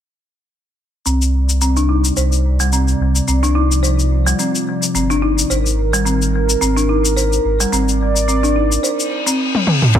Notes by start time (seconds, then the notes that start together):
1.06 C2 C3 G3 C4 D5, shaker
1.22 shaker
1.49 shaker
1.61 C4, shaker
1.77 D4, shaker
1.89 D#4
2.05 shaker
2.17 C2 C5, shaker
2.32 shaker
2.60 G3, shaker
2.73 C4, shaker
2.88 shaker
3.00 C2
3.16 shaker
3.28 C2 F3 C4, shaker
3.43 D4, shaker
3.55 D#4
3.72 shaker
3.83 C5, shaker
3.99 shaker
4.26 G3, shaker
4.39 C4, shaker
4.55 shaker
4.83 shaker
4.94 G1 C4, shaker
5.10 D4, shaker
5.22 D#4
5.38 shaker
5.50 G#1 D#3 A#4 C5, shaker
5.66 shaker
5.93 G3, shaker
6.05 C4, shaker
6.22 shaker
6.49 shaker
6.61 G#1 C4, shaker
6.76 D4, shaker
6.89 D#4
7.05 shaker
7.17 C5, shaker
7.33 shaker
7.44 G#1
7.60 G3, shaker
7.72 G#1 C4 D5, shaker
7.89 shaker
8.16 shaker
8.28 C4, shaker
8.43 D4, shaker
8.56 D#4
8.72 shaker
8.83 C5, reverse cymbal, shaker
9.00 shaker
9.26 C4, shaker
9.55 high tom
9.67 mid tom
9.82 mid tom
9.94 C2 C4, kick, shaker